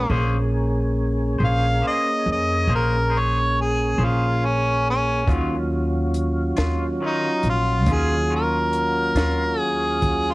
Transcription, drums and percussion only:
5.28 kick, closed hi-hat
6.14 closed hi-hat
6.57 snare, closed hi-hat
7.43 closed hi-hat
7.86 kick, closed hi-hat
8.73 closed hi-hat
9.16 snare, closed hi-hat
10.02 kick, closed hi-hat

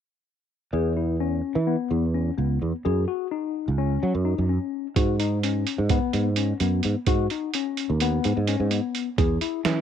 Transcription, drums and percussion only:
4.96 kick, closed hi-hat
5.20 closed hi-hat
5.43 closed hi-hat
5.67 closed hi-hat
5.89 kick, closed hi-hat
6.13 closed hi-hat
6.36 closed hi-hat
6.60 closed hi-hat
6.83 closed hi-hat
7.07 kick, closed hi-hat
7.30 closed hi-hat
7.54 closed hi-hat
7.77 closed hi-hat
8.00 closed hi-hat
8.24 closed hi-hat
8.47 closed hi-hat
8.71 closed hi-hat
8.95 closed hi-hat
9.18 kick, closed hi-hat
9.41 closed hi-hat
9.65 snare, closed hi-hat

